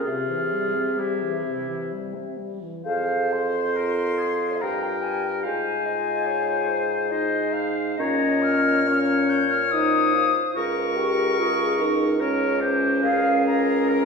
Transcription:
0.04 french horn C3, bassoon C3, oboe F4, clarinet G#4, flute E5
0.28 french horn E3
0.52 french horn G3
0.75 french horn C4
0.98 french horn G3, oboe E4, clarinet G4
1.22 french horn E3
1.45 french horn C3
1.68 french horn E3
1.92 french horn G3
2.15 french horn C4
2.38 french horn G3
2.62 french horn E3
2.85 bassoon F2, french horn G#4, clarinet C5, oboe C5, flute F5
3.32 flute C6
3.76 french horn F4, oboe A#4
4.19 oboe G#4
4.61 bassoon G2, oboe A#4, clarinet G5, flute A#5
4.83 flute G5
5.02 flute G#5
5.24 flute G5
5.43 bassoon G#2, french horn F4, oboe C5, clarinet F5, flute G#5
5.86 clarinet D#5
6.27 clarinet C#5
6.68 clarinet C5
7.11 french horn D#4, oboe C5, clarinet D#5
7.53 oboe C5, clarinet F5
7.97 bassoon A#2, french horn C#4, oboe C#5, clarinet D#5, flute A#5
8.42 flute F6
8.87 french horn C#4, clarinet C#5, oboe C#5
9.29 flute G6
9.50 flute F6
9.71 french horn D#4, clarinet C5, flute D#6
10.15 french horn F4
10.55 bassoon C#2, french horn F4, oboe A#4, clarinet A#4, flute C#6
10.97 french horn G4
11.39 french horn F4, clarinet G#4
11.80 french horn D#4, clarinet A#4
12.20 french horn C#4, oboe A#4, clarinet C#5
12.61 oboe G4, clarinet C5
13.03 bassoon C#2, oboe G#4, clarinet A#4, flute F5
13.46 flute A#5
13.90 oboe A#4

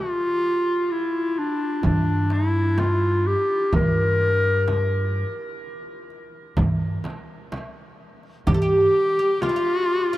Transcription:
Already playing: clarinet F4
0.91 clarinet E4
1.36 clarinet D4, darbuka ka
1.83 upright bass G2, clarinet D4, darbuka dum, frame drum
2.30 clarinet E4, darbuka tek
2.78 clarinet F4, darbuka tek, frame drum
3.27 clarinet G4
3.50 darbuka ka
3.73 upright bass G2, clarinet A#4, frame drum, darbuka dum
4.68 darbuka tek, frame drum
6.10 darbuka ka
6.57 upright bass G2, frame drum, darbuka dum
7.04 darbuka tek, frame drum
7.52 darbuka tek, frame drum
8.23 darbuka ka
8.47 upright bass G2, oud G4, clarinet G4, darbuka dum, frame drum
8.54 oud A4
8.62 oud G4
9.19 oud G4
9.42 clarinet F4, oud F4, darbuka tek, frame drum
9.49 oud E4
9.56 oud F4
10.13 oud F4

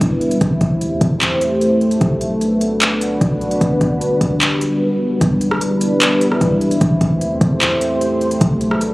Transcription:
Already playing: analog synth pad G3 B3 D4 E4 B4
0.01 808-style bass E1, kick, closed hi-hat
0.21 closed hi-hat
0.31 closed hi-hat
0.41 808-style bass A1, analog synth pad A3 C4 G4 C5, kick, closed hi-hat
0.61 808-style bass A1, kick, closed hi-hat
0.81 808-style bass E2, closed hi-hat
1.01 808-style bass E2, kick, closed hi-hat
1.21 clap, closed hi-hat
1.41 closed hi-hat
1.61 closed hi-hat
1.81 closed hi-hat
1.91 closed hi-hat
2.01 808-style bass B1, analog synth pad B3 D4 F#4 B4, kick, closed hi-hat
2.21 closed hi-hat
2.41 closed hi-hat
2.61 closed hi-hat
2.81 clap, closed hi-hat
3.01 closed hi-hat
3.21 808-style bass B1, kick, closed hi-hat
3.41 closed hi-hat
3.51 closed hi-hat
3.61 808-style bass G1, analog synth pad G3, kick, closed hi-hat
3.81 808-style bass G1, kick, closed hi-hat
4.01 closed hi-hat
4.21 808-style bass G1, kick, closed hi-hat
4.41 clap, closed hi-hat
4.61 closed hi-hat
5.21 808-style bass E1, analog synth pad G3 B3 D4 E4 B4, kick, closed hi-hat
5.41 closed hi-hat
5.51 cross-stick
5.61 closed hi-hat
5.81 closed hi-hat
6.01 clap, closed hi-hat
6.21 closed hi-hat
6.32 cross-stick
6.41 808-style bass E1, kick, closed hi-hat
6.61 closed hi-hat
6.71 closed hi-hat
6.81 808-style bass A1, analog synth pad A3 C4 G4 C5, kick, closed hi-hat
7.01 808-style bass A1, kick, closed hi-hat
7.21 808-style bass E2, closed hi-hat
7.41 808-style bass E2, kick, closed hi-hat
7.61 clap, closed hi-hat
7.81 closed hi-hat
8.01 closed hi-hat
8.21 closed hi-hat
8.31 closed hi-hat
8.41 808-style bass B1, analog synth pad A3 B3 D4 F#4 B4, kick, closed hi-hat
8.61 closed hi-hat
8.71 cross-stick
8.81 closed hi-hat

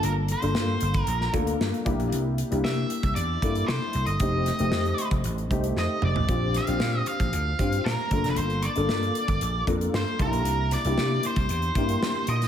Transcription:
Already playing: grand piano A#3 D4 F4 A4
0.03 slap bass G1, lead electric guitar A#4, closed hi-hat
0.28 lead electric guitar C5, closed hi-hat
0.42 slap bass G1, grand piano A#3 D4 F4 A4, closed hi-hat
0.55 slap bass G2, snare
0.81 slap bass G1, closed hi-hat
0.94 kick, closed hi-hat
1.01 lead electric guitar A#4
1.07 slap bass A#1, closed hi-hat
1.21 snare
1.33 slap bass D2, grand piano A#3 D4 F4 A4, kick, closed hi-hat
1.47 closed hi-hat
1.60 slap bass G2, snare
1.74 closed hi-hat
1.85 slap bass C2, grand piano A#3 D4 E4 G4, kick, closed hi-hat
1.99 slap bass A#1, closed hi-hat
2.12 slap bass C2, closed hi-hat
2.38 closed hi-hat
2.50 slap bass C2, grand piano A#3 D4 E4 G4, closed hi-hat
2.64 slap bass C3, lead electric guitar E5, snare
2.90 closed hi-hat
3.03 slap bass C2, kick, closed hi-hat
3.15 slap bass E2, lead electric guitar D5, closed hi-hat
3.42 slap bass G2, grand piano A#3 D4 E4 A4, kick, closed hi-hat
3.55 closed hi-hat
3.67 slap bass C3, lead electric guitar C5, snare
3.93 slap bass C2, closed hi-hat
4.06 slap bass G1, lead electric guitar D#5, closed hi-hat
4.20 slap bass F1, grand piano A3 C4 D#4 G4, kick, closed hi-hat
4.46 snare, closed hi-hat
4.59 slap bass F1, grand piano A3 C4 D#4 G4, closed hi-hat
4.72 slap bass F2, snare
4.85 closed hi-hat
4.98 closed hi-hat
5.11 slap bass F1, kick, closed hi-hat
5.24 slap bass A1, closed hi-hat
5.38 closed hi-hat
5.51 slap bass C2, grand piano A3 C4 D#4 G4, kick, closed hi-hat
5.64 closed hi-hat
5.76 slap bass F2, lead electric guitar D#5, snare
6.02 slap bass F1, lead electric guitar D5, mid tom
6.16 slap bass A1, floor tom
6.29 slap bass A#1, grand piano C4 D4 F4 G4, kick, closed hi-hat
6.54 lead electric guitar F5, snare, closed hi-hat
6.67 slap bass A#1, grand piano C4 D4 F4 G4, closed hi-hat
6.80 slap bass A#2, snare
7.06 lead electric guitar F5, closed hi-hat
7.20 slap bass A#1, kick, closed hi-hat
7.33 slap bass D2, closed hi-hat
7.59 slap bass G2, grand piano C4 D4 F4 G4, kick, closed hi-hat
7.72 closed hi-hat
7.85 slap bass A#2, lead electric guitar A#4, snare
8.11 slap bass G1, grand piano A3 D4 F4 A4, kick, closed hi-hat
8.18 grand piano A#3
8.24 slap bass F1, snare, closed hi-hat
8.30 lead electric guitar B4
8.36 slap bass G1, lead electric guitar C5, closed hi-hat
8.50 closed hi-hat
8.62 lead electric guitar D5, closed hi-hat
8.76 slap bass G1, grand piano A#3 D4 F4 A4, closed hi-hat
8.89 slap bass G2, snare
9.03 closed hi-hat
9.15 closed hi-hat
9.28 slap bass G1, kick, closed hi-hat
9.41 slap bass A#1, closed hi-hat
9.67 slap bass F2, grand piano A#3 D4 F4 A4, kick, closed hi-hat
9.81 closed hi-hat
9.93 slap bass G2, lead electric guitar C5, snare
10.19 slap bass C2, grand piano A#3 D4 D#4 G4, lead electric guitar A#4, kick, closed hi-hat
10.26 grand piano E4
10.32 slap bass A#1, closed hi-hat
10.45 slap bass C2, closed hi-hat
10.71 lead electric guitar D5, snare, closed hi-hat
10.85 slap bass C2, grand piano A#3 D4 E4 G4, closed hi-hat
10.98 slap bass C3, snare
11.23 lead electric guitar C5, closed hi-hat
11.36 slap bass C2, kick, closed hi-hat
11.49 slap bass E2, closed hi-hat
11.62 closed hi-hat
11.75 slap bass G2, grand piano A#3 D4 E4 G4, kick, closed hi-hat
11.89 closed hi-hat
12.03 snare
12.27 slap bass A#2, lead electric guitar D#5, closed hi-hat
12.42 snare, closed hi-hat

